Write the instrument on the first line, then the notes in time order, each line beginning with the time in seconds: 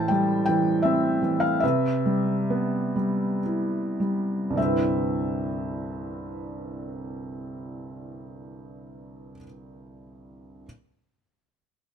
felt piano
Already playing: A2 E3 C5 G5 A5
0.08 G3 G5
0.46 E3 G5
0.82 C4 E5
1.22 E3
1.40 F5
1.60 C3 B4 E5
2.06 G3
2.50 B3
2.96 G3
3.45 E4
4.00 G3
4.50 C2 G2
4.56 D3 C4 E5
4.62 E4 B4